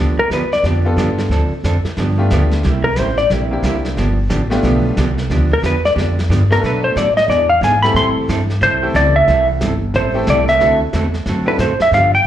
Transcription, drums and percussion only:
0.31 snare, hi-hat pedal
0.52 snare
0.64 brush sweep, snare
0.98 snare, hi-hat pedal
1.18 snare
1.31 brush sweep, snare
1.64 snare, hi-hat pedal
1.85 snare
1.97 brush sweep, snare
2.30 snare, hi-hat pedal
2.51 snare
2.63 brush sweep, snare
2.96 snare, hi-hat pedal
3.17 snare
3.30 brush sweep, snare
3.63 snare, hi-hat pedal
3.85 snare
3.97 brush sweep, snare
4.30 snare, hi-hat pedal
4.51 snare
4.63 brush sweep, snare
4.97 snare, hi-hat pedal
5.18 snare
5.30 brush sweep, snare
5.64 snare, hi-hat pedal
5.85 snare
5.98 brush sweep, snare
6.19 snare
6.31 snare, hi-hat pedal
6.51 snare
6.64 brush sweep, snare
6.97 snare, hi-hat pedal
7.17 snare
7.30 brush sweep, snare
7.63 snare, hi-hat pedal
7.84 snare
7.96 brush sweep, snare
8.29 snare, hi-hat pedal
8.50 snare
8.61 brush sweep, snare
8.95 snare, hi-hat pedal
9.28 brush sweep, snare
9.61 snare, hi-hat pedal
9.94 brush sweep, snare
10.27 snare, hi-hat pedal
10.48 snare
10.60 brush sweep, snare
10.93 snare, hi-hat pedal
11.14 snare
11.26 brush sweep, snare
11.59 snare, hi-hat pedal
11.80 snare
11.93 brush sweep, snare

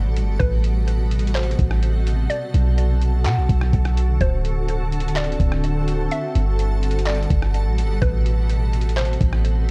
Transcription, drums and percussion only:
0.16 closed hi-hat
0.40 kick, closed hi-hat
0.64 closed hi-hat
0.88 closed hi-hat
1.11 closed hi-hat
1.19 closed hi-hat
1.27 closed hi-hat
1.35 clap, closed hi-hat
1.43 closed hi-hat
1.51 closed hi-hat
1.59 kick, closed hi-hat
1.71 cross-stick
1.83 closed hi-hat
2.07 closed hi-hat
2.30 closed hi-hat
2.54 closed hi-hat
2.78 closed hi-hat
3.02 closed hi-hat
3.25 clap, closed hi-hat
3.49 kick, closed hi-hat
3.61 cross-stick
3.73 kick, closed hi-hat
3.85 cross-stick, closed hi-hat
3.97 closed hi-hat
4.21 kick, closed hi-hat
4.45 closed hi-hat
4.68 closed hi-hat
4.92 closed hi-hat
5.00 closed hi-hat
5.08 closed hi-hat
5.16 clap, closed hi-hat
5.24 closed hi-hat
5.32 closed hi-hat
5.40 kick, closed hi-hat
5.52 cross-stick
5.64 closed hi-hat
5.88 closed hi-hat
6.11 closed hi-hat
6.35 closed hi-hat
6.59 closed hi-hat
6.83 closed hi-hat
6.91 closed hi-hat
6.99 closed hi-hat
7.06 clap, closed hi-hat
7.15 closed hi-hat
7.23 closed hi-hat
7.30 kick, closed hi-hat
7.42 cross-stick
7.54 closed hi-hat
7.78 closed hi-hat
8.02 kick, closed hi-hat
8.26 closed hi-hat
8.50 closed hi-hat
8.73 closed hi-hat
8.81 closed hi-hat
8.89 closed hi-hat
8.97 clap, closed hi-hat
9.05 closed hi-hat
9.13 closed hi-hat
9.21 kick, closed hi-hat
9.33 cross-stick
9.45 closed hi-hat

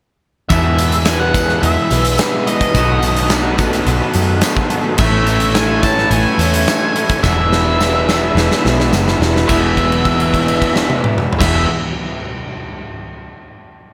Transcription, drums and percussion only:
0.50 kick, closed hi-hat, tambourine
0.79 closed hi-hat, tambourine
0.92 closed hi-hat
1.05 snare, closed hi-hat, tambourine
1.34 kick, closed hi-hat, tambourine
1.49 snare
1.63 closed hi-hat, tambourine
1.90 closed hi-hat, tambourine
2.05 closed hi-hat
2.18 snare, closed hi-hat, tambourine
2.47 closed hi-hat
2.61 kick, closed hi-hat
2.74 kick, closed hi-hat, tambourine
3.03 closed hi-hat, tambourine
3.17 closed hi-hat
3.30 snare, closed hi-hat, tambourine
3.58 kick, closed hi-hat, tambourine
3.73 snare, closed hi-hat
3.87 closed hi-hat, tambourine
4.14 closed hi-hat, tambourine
4.41 snare, closed hi-hat, tambourine
4.57 kick
4.70 closed hi-hat
4.98 kick, crash, tambourine
5.27 closed hi-hat, tambourine
5.40 closed hi-hat
5.55 snare, closed hi-hat, tambourine
5.83 kick, closed hi-hat, tambourine
5.98 snare
6.11 closed hi-hat, tambourine
6.39 closed hi-hat, tambourine
6.54 closed hi-hat
6.68 snare, closed hi-hat, tambourine
6.96 closed hi-hat
7.09 kick, closed hi-hat
7.23 kick, snare, tambourine
7.53 snare
7.80 snare, tambourine
8.09 snare, tambourine
8.37 snare, tambourine
8.51 snare
8.66 snare
8.80 snare
8.93 snare, tambourine
9.08 snare
9.22 snare, tambourine
9.36 snare
9.49 kick, crash, tambourine
9.77 kick, crash
9.92 crash
10.05 kick, crash
10.20 crash
10.34 kick, crash
10.48 crash
10.62 kick, crash
10.76 snare
10.90 high tom
11.04 mid tom
11.18 mid tom
11.33 floor tom
11.41 kick, snare, crash

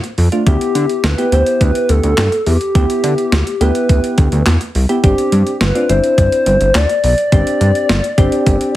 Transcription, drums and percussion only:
0.04 closed hi-hat
0.18 open hi-hat
0.32 closed hi-hat
0.47 kick, closed hi-hat
0.61 closed hi-hat
0.75 closed hi-hat
0.89 closed hi-hat
1.04 snare, closed hi-hat
1.18 closed hi-hat
1.32 closed hi-hat
1.46 closed hi-hat
1.61 kick, closed hi-hat
1.75 closed hi-hat
1.89 closed hi-hat
2.03 closed hi-hat
2.18 snare, clap, closed hi-hat
2.32 closed hi-hat
2.46 open hi-hat
2.61 closed hi-hat
2.75 kick, closed hi-hat
2.90 closed hi-hat
3.04 closed hi-hat
3.18 closed hi-hat
3.32 snare, closed hi-hat
3.47 closed hi-hat
3.61 closed hi-hat
3.75 closed hi-hat
3.89 kick, closed hi-hat
4.04 closed hi-hat
4.18 kick, closed hi-hat
4.32 closed hi-hat
4.46 snare, clap, closed hi-hat
4.61 closed hi-hat
4.75 open hi-hat
4.89 closed hi-hat
5.04 kick, closed hi-hat
5.18 closed hi-hat
5.32 closed hi-hat
5.47 closed hi-hat
5.61 snare, closed hi-hat
5.75 closed hi-hat
5.89 closed hi-hat
6.04 closed hi-hat
6.18 kick, closed hi-hat
6.32 closed hi-hat
6.46 closed hi-hat
6.61 closed hi-hat
6.75 snare, clap, closed hi-hat
6.89 closed hi-hat
7.04 open hi-hat
7.18 closed hi-hat
7.32 kick, closed hi-hat
7.47 closed hi-hat
7.61 closed hi-hat
7.75 closed hi-hat
7.89 snare, closed hi-hat
8.04 closed hi-hat
8.18 kick, closed hi-hat
8.32 closed hi-hat
8.46 kick, closed hi-hat
8.61 closed hi-hat

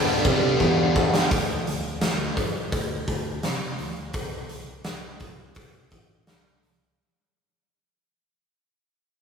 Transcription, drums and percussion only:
0.25 kick
0.60 kick
0.96 kick
1.14 snare
1.31 kick, open hi-hat
1.67 open hi-hat
2.01 snare, open hi-hat
2.37 kick, open hi-hat
2.72 kick, open hi-hat
3.08 kick, open hi-hat
3.43 snare, open hi-hat
3.79 open hi-hat
4.13 kick, open hi-hat
4.49 open hi-hat
4.84 snare, open hi-hat
5.20 kick, open hi-hat
5.55 kick, open hi-hat
5.91 kick, open hi-hat
6.27 snare, open hi-hat
6.63 open hi-hat

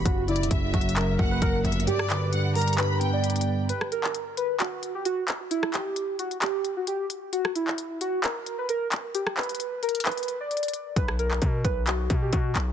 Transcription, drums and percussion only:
0.05 kick, closed hi-hat
0.28 closed hi-hat
0.36 closed hi-hat
0.43 closed hi-hat
0.51 kick, closed hi-hat
0.74 kick, closed hi-hat
0.81 closed hi-hat
0.89 closed hi-hat
0.96 clap, closed hi-hat
1.19 kick
1.42 kick, closed hi-hat
1.65 closed hi-hat
1.72 closed hi-hat
1.80 closed hi-hat
1.87 closed hi-hat
1.99 cross-stick
2.10 clap, closed hi-hat
2.33 closed hi-hat
2.55 closed hi-hat, open hi-hat
2.61 closed hi-hat
2.67 closed hi-hat
2.73 closed hi-hat
2.78 clap, closed hi-hat
3.01 closed hi-hat
3.24 closed hi-hat
3.30 closed hi-hat
3.36 closed hi-hat
3.41 closed hi-hat
3.69 closed hi-hat
3.81 cross-stick
3.92 closed hi-hat
4.04 clap
4.14 closed hi-hat
4.37 closed hi-hat
4.60 clap, closed hi-hat
4.83 closed hi-hat
5.05 closed hi-hat
5.28 clap, closed hi-hat
5.51 closed hi-hat
5.63 cross-stick
5.74 clap, closed hi-hat
5.96 closed hi-hat
6.19 closed hi-hat
6.31 closed hi-hat
6.42 clap, closed hi-hat
6.65 closed hi-hat
6.87 closed hi-hat
7.10 closed hi-hat
7.33 closed hi-hat
7.45 cross-stick
7.55 closed hi-hat
7.68 clap
7.78 closed hi-hat
8.01 closed hi-hat
8.24 clap, closed hi-hat
8.46 closed hi-hat
8.69 closed hi-hat
8.92 clap, closed hi-hat
9.15 closed hi-hat
9.27 cross-stick
9.37 clap, closed hi-hat
9.43 closed hi-hat
9.49 closed hi-hat
9.55 closed hi-hat
9.60 closed hi-hat
9.83 closed hi-hat
9.89 closed hi-hat
9.95 closed hi-hat
10.00 closed hi-hat
10.05 clap, closed hi-hat
10.11 closed hi-hat
10.17 closed hi-hat
10.23 closed hi-hat
10.28 closed hi-hat
10.51 closed hi-hat
10.57 closed hi-hat
10.63 closed hi-hat
10.68 closed hi-hat
10.74 closed hi-hat
10.96 kick, closed hi-hat
11.08 cross-stick
11.19 closed hi-hat
11.31 clap
11.42 kick, closed hi-hat
11.65 kick, closed hi-hat
11.87 clap, closed hi-hat
12.10 kick, closed hi-hat
12.33 kick, closed hi-hat
12.55 clap, closed hi-hat

